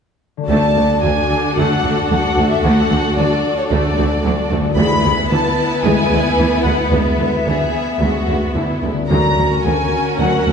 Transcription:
0.37 D3 A3
0.43 F#4 D5
0.48 D2 A3 D4 F#4 A4 A5
0.77 D2 A3
1.03 D2 F#3 G#5
1.57 D2 A3 F#5
1.84 D2 A3
2.11 D2 F#3 F#5
2.37 D2 A3
2.51 E5
2.63 D2 A3 F#5
2.91 D2 A3
3.17 D2 F#3 D5
3.59 C#5
3.70 D2 A3 D5
3.98 D2 A3
4.25 D2 F#3
4.51 D2 A3
4.61 D3
4.65 G#3
4.70 E4
4.74 D2 B3 B4 B5
4.78 D2 G#3 E4
5.04 D2 G#3
5.31 D2 E3 A5
5.84 D2 G#3 G#5
6.11 D2 G#3
6.38 D2 E3
6.64 D2 G#3 F#5
6.91 D2 G#3 E5
7.19 D2 G#3
7.46 D2 E3 G#4
8.01 D2 G#3 F#4
8.29 D2 G#3
8.56 D2 E3 E4
8.83 D2 G#3
8.93 D3
8.97 C#4
9.02 F#4
9.07 A#4 A#5
9.11 D2 F#3 C#4 F#4 A#4
9.38 D2 F#3
9.64 D2 C#3 G#5
10.19 D2 F#3 F#5
10.47 D2 F#3

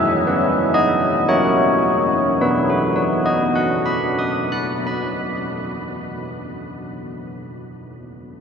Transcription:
Already playing: F#3 E5
0.27 C#4 B4
0.74 D#5
1.28 F#3 E4 A#4 C#5
2.41 B3 B4
2.70 F#4
2.96 B4
3.26 D#5
3.56 F#5
3.86 B5
4.19 D#6
4.52 F#6
4.87 B5

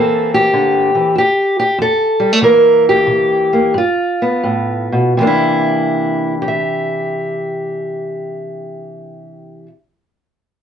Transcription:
Already playing: C3 E3 A#3 C4 A4
0.34 G4
0.53 D3
0.95 E3
1.15 F2 G4
1.59 G4
1.78 F2 A4
2.20 G3
2.33 A3
2.42 C3 E3 A#3 E4 A#4
2.89 G4
3.07 C3
3.53 A#3
3.74 G2 F4
4.22 B3
4.44 A2
4.92 B2
5.17 C3 E3 A#3
5.22 D4
5.27 E4
6.42 G4
6.48 E5

